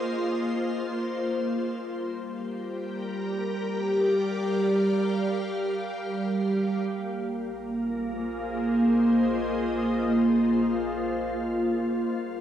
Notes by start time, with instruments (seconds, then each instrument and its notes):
Already playing: ambient pad A#3 F4 G#4 C5 D#5
1.68 ambient pad G3
1.86 ambient pad G4
2.13 ambient pad A#4
3.22 ambient pad D5
3.34 ambient pad F5
6.87 sub bass A#1, ambient pad A#3
7.33 ambient pad F4
7.47 ambient pad G#4
7.68 ambient pad C5
8.47 ambient pad D#5
12.09 sub bass G1, ambient pad G3
12.36 ambient pad D5